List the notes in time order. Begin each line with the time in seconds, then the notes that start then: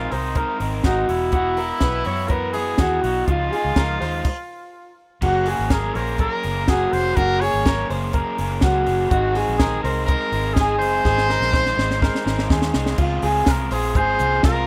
Already playing: G#3 C4 D#4 F4 A#4
0.11 C2 C4 D#4 A#4 C5, open hi-hat
0.35 G#3 C4 D#4 A#4, kick, closed hi-hat
0.59 G#1 C4 D#4 A#4, open hi-hat
0.83 G#1 G#3 C4 D#4 F#4 A#4, kick, snare, closed hi-hat
1.08 E1 B3 E4 F#4, open hi-hat
1.32 E3 B3 E4 F#4, kick, closed hi-hat
1.57 B3 E4 F#4 A#4, open hi-hat
1.80 B1 E3 B3 E4 F#4 B4, kick, snare, closed hi-hat
2.04 F#2 E4 F#4 C#5, open hi-hat
2.09 B3
2.28 E3 B3 E4 F#4 A#4 B4, kick, closed hi-hat
2.53 E4 F#4 G#4, open hi-hat
2.57 B3
2.78 D#2 E3 B3 E4 F#4, kick, snare, closed hi-hat
3.02 B1 E4 F#4, open hi-hat
3.06 B3
3.26 C#2 C#3 F3 G#3 D#4 F4, kick, closed hi-hat
3.30 F4
3.52 G#3 D#4 F4 G#4, open hi-hat
3.65 C#2
3.76 C#2 F3 G#3 D#4 F4 A#4, kick, snare, closed hi-hat
4.00 D#2 G#3 D#4 F4 C5, open hi-hat
4.25 kick, crash
5.22 F#1 F#3 A#3 C#4 F#4 G#4, kick, crash
5.46 A#3 C#4 G#4, open hi-hat
5.59 G#1
5.70 F#3 A#3 C#4 G#4 A#4, kick, snare, closed hi-hat
5.94 A#1 A#3 C#4 G#4 A#4 C5, open hi-hat
6.18 F#3 A#3 C#4 A#4, kick, closed hi-hat
6.23 G#4
6.43 F#1 A#3 C#4 G#4, open hi-hat
6.67 F#3 A#3 C#4 F#4 G#4, kick, snare, closed hi-hat
6.92 F1 A#3 C#4 G#4 C5, open hi-hat
7.16 F#1 F#3 A#3 C#4 F#4 G#4 A#4, kick, closed hi-hat
7.39 A#3 C#4 G#4 C#5, open hi-hat
7.54 G#1
7.65 F#3 A#3 C#4 G#4 A#4, kick, snare, closed hi-hat
7.90 F#1 A#3 C#4 G#4 C5, open hi-hat
8.13 F#3 A#3 C#4 G#4 A#4, kick, closed hi-hat
8.38 F#1 A#3 C#4 G#4, open hi-hat
8.61 C#2 F#3 A#3 C#4 F#4 G#4, kick, snare, closed hi-hat
8.87 F#1 C#4 G#4, open hi-hat
8.91 A#3
9.10 G#1 G#2 D#3 G#3 C4 D#4 F#4 G#4, kick, closed hi-hat
9.35 G#3 C4 D#4 G#4, open hi-hat
9.48 A#1
9.58 G#2 D#3 G#3 C4 D#4 G#4 A#4, kick, snare, closed hi-hat
9.62 G#4
9.83 C2 C4 D#4 G#4 A#4 C5, open hi-hat
9.88 G#3
10.06 G#3 C4 A#4, kick, closed hi-hat
10.10 D#4 G#4
10.32 G#1 G#3 C4 D#4 G#4, open hi-hat
10.54 G#2 D#3 G#3 C4 D#4 G#4, kick, snare, closed hi-hat
10.58 G#4
10.79 F#1 C4 D#4 G#4 C5, open hi-hat
10.83 G#3
11.04 G#1 G#2 D#3 G#3 C4 D#4 G#4, kick, snare
11.18 snare
11.28 G#3 C4 D#4 G#4 A#4, snare
11.40 A#1, snare
11.51 G#2 D#3 G#3 C4 D#4 G#4 C5, kick, snare
11.66 snare
11.77 G#1 G#3 C4 D#4 G#4 C5, snare
11.91 snare
12.00 G#3 C4 D#4 G#4 A#4, kick, snare
12.15 snare
12.24 G#1 G#3 C4 D#4 G#4, snare
12.39 snare
12.50 D#2 G#2 D#3 G#3 C4 D#4 G#4, kick, snare
12.62 snare
12.74 C2 G#3 C4 D#4 G#4, snare
12.86 snare
12.98 C#2 C#3 G#3 C4 F4 G#4, kick, crash
13.22 C#2 F4 G#4, hi-hat pedal, open hi-hat
13.27 C4
13.46 C2 C#3 G#3 C4 F4 G#4 A#4, kick, snare, hi-hat pedal, open hi-hat
13.71 A#1 F4 G#4 C5, hi-hat pedal, open hi-hat
13.75 C4
13.95 G#1 G#3 C4 F4 G#4 C5, kick, hi-hat pedal, open hi-hat
13.99 G#4
14.19 C2 F4 G#4, hi-hat pedal, open hi-hat
14.23 C4
14.43 C2 C#3 G#3 C4 F4 G#4 A#4, kick, snare, hi-hat pedal, open hi-hat